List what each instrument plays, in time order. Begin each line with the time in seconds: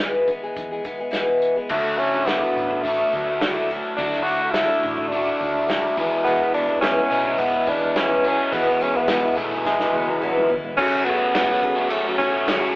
Already playing: fingered electric bass E2
0.00 steel-string acoustic guitar E2 B2 E3 G#3 B3 G#4
0.27 steel-string acoustic guitar E3 G#3 B3 G#4, kick, closed hi-hat
0.43 steel-string acoustic guitar E3 G#3 B3 G#4
0.56 fingered electric bass E2, kick, closed hi-hat
0.71 steel-string acoustic guitar E3 G#3 B3 G#4
0.84 steel-string acoustic guitar E3 G#3 B3 G#4, kick, closed hi-hat
0.99 steel-string acoustic guitar E3 G#3 B3 G#4
1.11 steel-string acoustic guitar E2 B2 E3 G#3 B3 G#4, snare, closed hi-hat
1.42 closed hi-hat
1.56 steel-string acoustic guitar E3 G#3 B3 G#4
1.69 fingered electric bass D2, overdriven electric guitar D3 A3 D4 F#4, steel-string acoustic guitar D3 F#3 A3 D4 E4, tenor saxophone A3, kick, crash
1.98 steel-string acoustic guitar F#3 A3 D4 E4, tenor saxophone C#4, open hi-hat
2.12 steel-string acoustic guitar A3 D4 E4
2.26 steel-string acoustic guitar D3 F#3 A3 D4 E4, tenor saxophone B3, snare, open hi-hat
2.40 steel-string acoustic guitar A3 D4 E4
2.56 fingered electric bass A1, open hi-hat
2.68 steel-string acoustic guitar A3 D4 E4, kick
2.83 overdriven electric guitar D3 A3 D4, tenor saxophone A3, kick, open hi-hat
2.87 overdriven electric guitar F#4
2.98 steel-string acoustic guitar A3 D4 E4
3.13 fingered electric bass D2, steel-string acoustic guitar F#3 A3 D4 E4, kick, open hi-hat
3.27 steel-string acoustic guitar A3 D4 E4
3.41 steel-string acoustic guitar D3 F#3 A3 D4 E4, snare, open hi-hat
3.70 steel-string acoustic guitar F#3 A3 D4 E4, open hi-hat
3.96 fingered electric bass D2, steel-string acoustic guitar D3 F#3 A3 D4 E4, overdriven electric guitar D3 A3, tenor saxophone D4, kick, open hi-hat
4.01 overdriven electric guitar D4 F#4
4.13 snare
4.23 steel-string acoustic guitar F#3, tenor saxophone F#4, open hi-hat
4.27 steel-string acoustic guitar A3 D4 E4
4.40 steel-string acoustic guitar A3 D4 E4
4.51 steel-string acoustic guitar D3 F#3 A3 D4 E4, tenor saxophone E4, snare, open hi-hat
4.67 steel-string acoustic guitar A3 D4 E4
4.82 fingered electric bass A1, kick, open hi-hat
4.97 steel-string acoustic guitar A3 D4 E4, kick
5.08 overdriven electric guitar D3, tenor saxophone D4, open hi-hat
5.12 overdriven electric guitar A3 D4 F#4, kick
5.24 steel-string acoustic guitar A3 D4 E4
5.40 fingered electric bass D2, steel-string acoustic guitar F#3 A3 D4 E4, kick, open hi-hat
5.52 steel-string acoustic guitar A3 D4 E4
5.68 steel-string acoustic guitar D3 F#3 A3 D4 E4, snare, open hi-hat
5.96 overdriven electric guitar E2 B2 E3 G#3 B3 G#4, fingered electric bass E2, steel-string acoustic guitar E3 G#3 B3 E4, kick, open hi-hat
6.24 steel-string acoustic guitar E2 B2 E3 G#3 B3 E4, tenor saxophone B3, grand piano E4 G#4 B4, open hi-hat
6.40 steel-string acoustic guitar E3 G#3 B3 E4
6.54 steel-string acoustic guitar E3 G#3 B3 E4, tenor saxophone D4, open hi-hat
6.67 steel-string acoustic guitar E3 G#3 B3 E4
6.81 steel-string acoustic guitar E2 B2 E3 G#3 B3 E4, tenor saxophone C#4, snare, open hi-hat
6.98 steel-string acoustic guitar E3 G#3 B3 E4
7.10 fingered electric bass B1, overdriven electric guitar E2 B2 E3 G#3 B3 G#4, open hi-hat
7.25 steel-string acoustic guitar G#3 B3 E4, kick
7.29 steel-string acoustic guitar E3
7.38 tenor saxophone B3, kick, open hi-hat
7.54 steel-string acoustic guitar E3 G#3 B3 E4
7.66 fingered electric bass E2, steel-string acoustic guitar E3 G#3 B3 E4, tenor saxophone D4, grand piano E4 G#4 B4, kick, open hi-hat
7.82 steel-string acoustic guitar E3 G#3 B3 E4
7.96 steel-string acoustic guitar E2 B2 E3 G#3 B3 E4, tenor saxophone C#4, snare, open hi-hat
8.24 overdriven electric guitar E2 B2 E3 G#3 B3 G#4, steel-string acoustic guitar E3 G#3 B3 E4, open hi-hat
8.51 fingered electric bass E2, steel-string acoustic guitar E2 B2 E3 G#3 B3 E4, tenor saxophone B3, grand piano E4 G#4 B4, kick, open hi-hat
8.68 steel-string acoustic guitar E3 G#3 B3 E4
8.81 steel-string acoustic guitar E3 G#3 B3 E4, tenor saxophone C#4, open hi-hat
8.96 steel-string acoustic guitar E3 G#3 B3 E4, tenor saxophone B3
9.08 steel-string acoustic guitar E2 B2 E3 G#3 B3, snare, open hi-hat
9.12 steel-string acoustic guitar E4
9.24 steel-string acoustic guitar E3 G#3 B3 E4
9.35 fingered electric bass B1, overdriven electric guitar B2 E3 G#3 B3 G#4, tenor saxophone A3, kick, open hi-hat
9.40 overdriven electric guitar E2
9.51 steel-string acoustic guitar G#3 B3 E4, kick
9.56 steel-string acoustic guitar E3
9.65 tenor saxophone G#3, kick, snare
9.80 steel-string acoustic guitar G#3 B3 E4, snare
9.84 steel-string acoustic guitar E3
9.92 fingered electric bass E2, steel-string acoustic guitar G#3, grand piano E4 G#4 B4, high tom
9.96 steel-string acoustic guitar B3 E4
10.08 steel-string acoustic guitar E3 G#3 B3 E4, high tom
10.22 steel-string acoustic guitar E2 B2 E3 G#3 B3 E4, mid tom
10.37 mid tom
10.48 steel-string acoustic guitar E3 G#3 B3 E4, floor tom
10.65 floor tom
10.77 steel-string acoustic guitar F#2 C#3 F#3 A3 C#4 G#4, overdriven electric guitar F#2 C#3 F#3 A3 C#4 F#4, fingered electric bass F#2, string section A3 C#4 F#4, tenor saxophone C#4, grand piano F#4 G#4 A4, kick, crash
11.05 overdriven electric guitar F#3 A3 C#4 F#4, steel-string acoustic guitar F#3 A3, tenor saxophone B3, grand piano F#4 G#4 A4, ride
11.09 steel-string acoustic guitar C#4 G#4
11.35 overdriven electric guitar F#2 C#3 F#3 A3 C#4 F#4, steel-string acoustic guitar F#2 C#3 F#3 A3 C#4 G#4, snare, ride
11.49 steel-string acoustic guitar F#3 A3 C#4 G#4, overdriven electric guitar F#3 A3 C#4 F#4
11.62 grand piano F#4 G#4 A4, muted overdriven electric guitar stroke, kick, ride
11.75 overdriven electric guitar F#3 A3 C#4 F#4, steel-string acoustic guitar F#3 A3 C#4 G#4
11.89 overdriven electric guitar F#2 C#3 F#3 A3 C#4 F#4, tenor saxophone A3, ride
12.04 overdriven electric guitar F#3 A3 C#4 F#4, steel-string acoustic guitar F#3 A3 C#4 G#4
12.18 fingered electric bass F#2, overdriven electric guitar F#3 A3 C#4, steel-string acoustic guitar F#3 A3, tenor saxophone C#4, kick, ride
12.22 steel-string acoustic guitar C#4 G#4, overdriven electric guitar F#4
12.47 fingered electric bass F#2, steel-string acoustic guitar F#2 C#3 F#3 A3 C#4 G#4, snare, ride
12.60 overdriven electric guitar F#3 A3 C#4 F#4